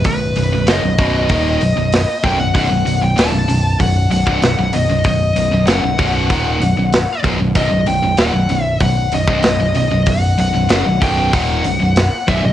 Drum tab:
HH |o-o-o-o-o-o-o-o-|o-o-o-o-o-o-o-o-|o-o-o-o-o-o-o-o-|o-o-o-o-o-o-o-o-|
SD |----o-------o---|----o-------o---|----o-------o---|----o-------o---|
BD |o-----o-o-----o-|o-------o--o----|o-----o-o-----o-|o-------o--o----|

HH |o-o-o-o-o-o-o-o-|
SD |----o-------o---|
BD |o-----o-o-----o-|